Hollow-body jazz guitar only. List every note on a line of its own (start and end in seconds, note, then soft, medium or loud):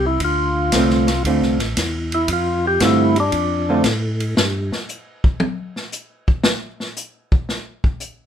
0.74 1.06 D3 medium
0.74 1.07 A3 medium
0.74 1.07 C4 medium
0.74 1.07 F4 medium
1.26 1.58 D3 soft
1.26 1.58 A3 medium
1.26 1.58 C4 medium
1.26 1.59 F4 medium
2.81 3.14 D3 medium
2.81 3.14 A3 medium
2.81 3.14 C4 medium
2.81 3.14 F4 medium
3.69 3.84 D3 medium
3.69 3.84 A3 medium
3.69 3.84 C4 medium
3.69 3.84 F4 medium